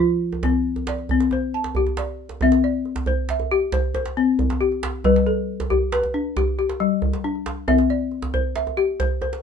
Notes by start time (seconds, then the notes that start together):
Already playing: F3
0.00 F4
0.33 djembe tone
0.43 C4, djembe slap, djembe bass
0.76 djembe tone
0.87 D5, djembe slap
0.98 djembe slap
1.09 C4, djembe slap, djembe bass
1.20 djembe slap
1.31 C5, djembe tone
1.54 A5
1.64 djembe slap
1.75 G4, djembe bass
1.87 djembe tone
1.97 D5, djembe slap
2.29 djembe slap
2.41 C4 E5, djembe tone, djembe bass
2.52 djembe slap
2.64 D5, djembe slap
2.85 djembe slap
2.96 djembe slap, djembe tone
3.06 C5, djembe bass
3.29 E5, djembe slap
3.40 djembe tone
3.51 G4
3.72 C5, djembe slap, djembe bass
3.84 djembe slap
3.95 C5, djembe tone
4.06 djembe slap
4.17 C4
4.39 djembe bass
4.50 djembe slap, djembe tone
4.61 G4
4.72 djembe slap
4.83 djembe slap
5.04 G3 B4, djembe tone, djembe bass
5.16 djembe slap
5.27 A4, djembe slap
5.60 djembe slap, djembe tone
5.70 G4, djembe bass
5.92 B4, djembe slap
6.03 djembe tone
6.14 D4
6.37 G4, djembe slap, djembe bass
6.59 G4
6.69 djembe slap
6.80 G3
7.02 djembe bass
7.13 djembe slap, djembe tone
7.24 D4
7.35 djembe slap
7.46 djembe slap
7.68 C4 E5, djembe tone, djembe bass
7.78 djembe slap
7.90 D5, djembe slap
8.11 djembe slap
8.22 djembe slap, djembe tone
8.34 C5, djembe bass
8.56 E5, djembe slap
8.67 djembe tone
8.77 G4
9.00 C5, djembe slap, djembe bass
9.11 djembe slap
9.21 C5, djembe tone
9.33 djembe slap